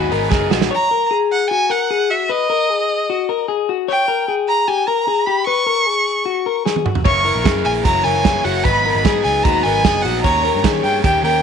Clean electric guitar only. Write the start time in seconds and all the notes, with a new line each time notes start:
Already playing: F#4
0.12 A#4
0.30 G#4
0.51 F#4
0.71 C#5
0.91 A#4
1.11 G#4
1.51 F#4
1.70 A#4
1.91 G#4
2.10 F#4
2.29 B4
2.50 A#4
2.70 G#4
3.10 F#4
3.29 A#4
3.48 G#4
3.69 F#4
3.88 C#5
4.08 A#4
4.28 G#4
4.68 G4
4.88 A#4
5.08 G#4
5.27 G4
5.47 B4
5.67 A#4
5.86 G#4
6.26 F#4
6.46 A#4
6.66 G#4
6.85 F#4
7.05 C#5
7.25 A#4
7.44 G#4
7.84 F#4
8.04 A#4
8.25 G#4
8.45 F#4
8.65 B4
8.85 A#4
9.05 G#4
9.45 F#4
9.66 A#4
9.85 G#4
10.05 F#4
10.24 C#5
10.45 A#4
10.65 G#4
11.04 G4
11.25 A#4